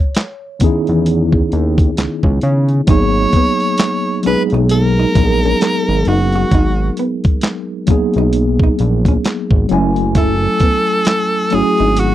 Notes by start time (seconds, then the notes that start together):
Already playing: C#5
0.15 snare, clap, closed hi-hat
0.59 E2 D#3 B3 C#4 D#4, kick, closed hi-hat
0.64 E4 G#4
0.87 E2, closed hi-hat
1.06 closed hi-hat
1.32 kick
1.52 D#2, closed hi-hat
1.78 kick, closed hi-hat
1.97 C#2, snare, clap, closed hi-hat
2.23 C#2, kick
2.41 C#3, closed hi-hat
2.69 closed hi-hat
2.87 G#1 F#3 A#3 B3 D#4 C#5, kick, closed hi-hat
2.91 G#4
3.33 B3, kick, closed hi-hat
3.60 closed hi-hat
3.78 muted hollow-body jazz guitar stroke, snare, clap, closed hi-hat
4.23 B1 F#3 G#3 B3 C#4 D#4 B4, closed hi-hat
4.27 G#4
4.50 B1, closed hi-hat
4.54 D#4
4.69 A#4, closed hi-hat
5.00 D#4
5.15 A#1 F#3 B3 D#4 A#4, muted hollow-body jazz guitar stroke, kick, closed hi-hat
5.19 A#4
5.26 G#4
5.43 C#4, closed hi-hat
5.61 muted hollow-body jazz guitar stroke, snare, clap, closed hi-hat
5.89 G#1
6.05 F#1 D#4 F#4, closed hi-hat
6.33 F#4, closed hi-hat
6.51 G#1 D#4, kick, closed hi-hat
6.97 B3, closed hi-hat
7.24 kick, closed hi-hat
7.41 muted hollow-body jazz guitar stroke, snare, clap, closed hi-hat
7.87 B1 F#3 A#3 B3 C#4 D#4, kick, closed hi-hat
7.91 G#4
8.14 B1, closed hi-hat
8.18 D#4
8.33 closed hi-hat
8.60 D#4, kick
8.79 A#1, muted hollow-body jazz guitar stroke, closed hi-hat
9.05 C#4, kick, closed hi-hat
9.25 snare, clap, closed hi-hat
9.51 G#1, kick
9.69 F#1 F#3 G#3 C#4 E4, closed hi-hat
9.73 A3 G#5
9.96 closed hi-hat
10.15 E4 A4, kick, closed hi-hat
10.60 B3, kick, closed hi-hat
10.87 closed hi-hat
11.05 muted hollow-body jazz guitar stroke, snare, clap, closed hi-hat
11.50 G#1 F#3 A3 C#4 E4, closed hi-hat
11.54 F#4 G#4
11.62 G#4
11.78 G#1 D#4, closed hi-hat
11.96 F#4, closed hi-hat